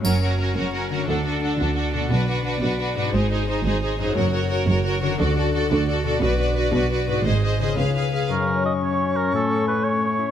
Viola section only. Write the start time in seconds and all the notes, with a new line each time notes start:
0.04 C#4
0.22 C#4
0.39 C#4
0.56 C#4
0.75 C#4
0.91 C#4
1.09 D4
1.26 D4
1.43 D4
1.60 D4
1.76 D4
1.94 D4
2.11 D4
2.28 D4
2.44 D4
2.62 D4
2.79 D4
2.96 D4
3.14 D#4
3.30 D#4
3.48 D#4
3.66 D#4
3.82 D#4
3.99 D#4
4.16 F#4
4.33 F#4
4.51 F#4
4.68 F#4
4.85 F#4
5.02 F#4
5.20 F#4
5.38 F#4
5.55 F#4
5.72 F#4
5.89 F#4
6.05 F#4
6.23 F#4
6.40 F#4
6.57 F#4
6.75 F#4
6.92 F#4
7.09 F#4
7.27 G#4
7.44 G#4
7.62 G#4
7.79 G#4
7.96 G#4
8.14 G#4